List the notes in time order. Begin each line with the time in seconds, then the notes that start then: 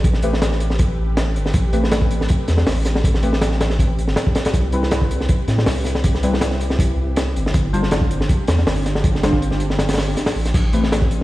Already playing: A1 A3 C4 G4 A4 B4
0.04 kick, closed hi-hat
0.13 snare
0.23 A3 C4 G4 B4, closed hi-hat
0.33 snare
0.42 snare, closed hi-hat
0.52 snare
0.60 closed hi-hat
0.70 snare
0.79 kick, closed hi-hat
1.17 snare, closed hi-hat
1.35 G1, closed hi-hat
1.46 snare
1.54 A1, kick, closed hi-hat
1.73 A3 C4 G4 B4, closed hi-hat
1.84 snare
1.91 snare, closed hi-hat
2.02 kick
2.11 closed hi-hat
2.21 snare
2.29 kick, closed hi-hat
2.48 E2, snare, closed hi-hat
2.58 snare
2.66 A1, snare, open hi-hat
2.85 snare, closed hi-hat
2.95 snare
3.04 kick, closed hi-hat
3.14 snare
3.23 A3 C4 G4 B4, closed hi-hat
3.33 snare
3.41 snare, closed hi-hat
3.51 snare
3.61 snare, closed hi-hat
3.70 snare
3.79 kick, closed hi-hat
3.99 closed hi-hat
4.07 G1, snare
4.16 snare, closed hi-hat
4.27 kick
4.35 snare, closed hi-hat
4.45 snare, closed hi-hat
4.54 C2 E4 G4 B4, kick, closed hi-hat
4.72 G3 C4 E4 B4, closed hi-hat
4.83 snare
4.91 snare, closed hi-hat
5.01 kick
5.11 closed hi-hat
5.20 snare
5.29 kick, closed hi-hat
5.48 A2, snare, closed hi-hat
5.58 snare
5.66 C2, snare, open hi-hat
5.85 snare, closed hi-hat
5.95 snare
6.04 kick, closed hi-hat
6.14 snare
6.23 G3 C4 E4 B4, closed hi-hat
6.33 snare
6.41 snare, closed hi-hat
6.51 snare
6.60 closed hi-hat
6.70 snare
6.79 kick, closed hi-hat
7.16 snare, closed hi-hat
7.35 G1, closed hi-hat
7.46 snare
7.54 G1 C4 D4 F4 G4, kick, closed hi-hat
7.73 G3 D4 F4 C5, closed hi-hat
7.83 snare
7.91 snare, closed hi-hat
8.01 kick
8.11 closed hi-hat
8.21 snare
8.29 kick, closed hi-hat
8.47 E2, snare, closed hi-hat
8.59 snare
8.67 G1, snare, open hi-hat
8.86 snare, closed hi-hat
8.95 snare
9.04 kick, closed hi-hat
9.15 snare
9.23 G3 D4 F4 C5, snare, closed hi-hat
9.33 kick
9.42 closed hi-hat
9.51 snare
9.60 closed hi-hat
9.70 snare
9.79 snare, closed hi-hat
9.89 snare, closed hi-hat
9.93 snare, closed hi-hat
9.98 snare, open hi-hat
10.17 snare, closed hi-hat
10.26 snare, open hi-hat
10.35 A1
10.45 snare, closed hi-hat
10.54 A1 C4 G4 A4 B4, kick, closed hi-hat, crash
10.73 A3 C4 G4 B4, closed hi-hat
10.84 snare
10.92 snare, closed hi-hat
11.02 kick
11.11 closed hi-hat